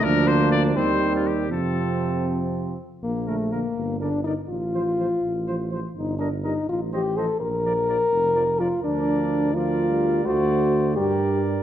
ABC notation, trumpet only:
X:1
M:6/8
L:1/16
Q:3/8=83
K:Bb
V:1 name="Trumpet"
B2 c2 d2 c3 F G2 | A6 z6 | z2 B2 B2 z2 d2 d2 | z2 c2 c2 z2 c2 c2 |
z2 e2 e2 z2 e2 e2 | z2 d2 d2 z2 d2 d2 | d6 d6 | d6 d6 |]